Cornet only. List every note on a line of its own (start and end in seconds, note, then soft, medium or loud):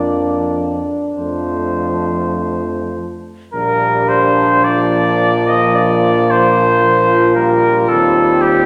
0.00 0.87 D5 soft
1.16 3.15 C5 soft
3.53 4.10 A#4 medium
4.08 4.66 C5 medium
4.64 5.48 D5 loud
5.47 5.76 D#5 medium
5.75 6.32 D5 loud
6.30 7.35 C5 loud
7.35 7.90 A#4 medium
7.89 8.43 A4 medium
8.41 8.66 G4 medium